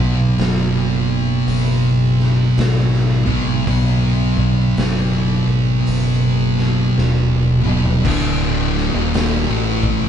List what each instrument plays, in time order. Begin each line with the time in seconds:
Already playing: fingered electric bass B1, distorted electric guitar B2 F#3 B3
0.38 fingered electric bass F#1, snare, open hi-hat
1.47 fingered electric bass F#1, open hi-hat
2.19 snare
2.58 fingered electric bass G#1, snare, open hi-hat
2.94 snare
3.26 distorted electric guitar B2 F#3 B3, kick
3.66 fingered electric bass B1, distorted electric guitar B2 F#3 B3, kick, open hi-hat
4.37 kick
4.77 fingered electric bass F#1, snare, open hi-hat
5.47 fingered electric bass G#1
5.87 fingered electric bass F#1, open hi-hat
6.58 snare
6.96 fingered electric bass D#1, snare
7.64 distorted electric guitar B2 F#3 B3, mid tom
7.85 floor tom
8.04 fingered electric bass D1, distorted electric guitar D2 A2 D3, kick, crash
8.77 snare
8.94 fingered electric bass D#1, distorted electric guitar D#2 A#2 D#3
9.14 snare, open hi-hat
9.49 fingered electric bass A1, distorted electric guitar A2 E3 A3
9.83 kick